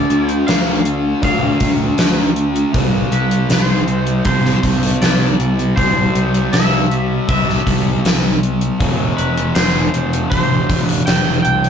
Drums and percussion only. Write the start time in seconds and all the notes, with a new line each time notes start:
0.10 closed hi-hat
0.29 closed hi-hat
0.48 snare, closed hi-hat
0.85 closed hi-hat
1.23 kick, closed hi-hat
1.60 kick, closed hi-hat
1.98 snare, closed hi-hat
2.36 closed hi-hat
2.56 closed hi-hat
2.74 kick, closed hi-hat
3.12 closed hi-hat
3.31 closed hi-hat
3.50 snare, closed hi-hat
3.88 closed hi-hat
4.07 closed hi-hat
4.25 kick, closed hi-hat
4.45 snare
4.63 kick, closed hi-hat
4.83 closed hi-hat
5.02 snare, closed hi-hat
5.40 closed hi-hat
5.59 closed hi-hat
5.77 kick, closed hi-hat
6.15 closed hi-hat
6.34 closed hi-hat
6.53 snare, closed hi-hat
6.91 closed hi-hat
7.29 kick, closed hi-hat
7.49 snare
7.67 kick, closed hi-hat
8.05 snare, closed hi-hat
8.43 closed hi-hat
8.61 closed hi-hat
8.80 kick, closed hi-hat
9.18 closed hi-hat
9.38 closed hi-hat
9.55 snare, closed hi-hat
9.94 closed hi-hat
10.13 closed hi-hat
10.31 kick, closed hi-hat
10.70 kick, closed hi-hat
10.89 closed hi-hat
11.07 snare, closed hi-hat
11.45 closed hi-hat
11.64 closed hi-hat